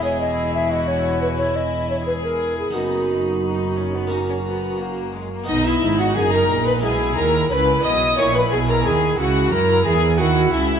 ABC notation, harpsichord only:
X:1
M:4/4
L:1/8
Q:1/4=89
K:B
V:1 name="Harpsichord"
[G,EG]8 | [B,DF]4 [A,CF]4 | [B,DF]4 [G,CE]4 | [EF]8 |]
V:2 name="Harpsichord" clef=bass
E,,8 | F,,6- F,, z | B,, G,, F,, A,, B,, D, C, B,, | A,, B,, D, C, F, E, D, C, |]